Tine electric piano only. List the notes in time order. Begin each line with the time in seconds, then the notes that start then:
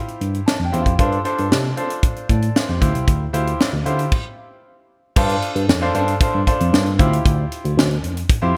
0.21 G2
0.60 F2
0.73 E2
0.86 F2
0.99 G2
1.39 G2
1.51 C3
2.29 A2
2.69 F2
2.82 D2
2.94 C2
3.08 D2
3.34 D2
3.72 D2
3.86 D3
5.16 G2
5.55 G2
5.68 F2
5.95 G2
6.34 G2
6.60 F2
6.73 G2
6.99 D2
7.25 D2
7.64 D2
7.77 D2
8.03 F2
8.43 F2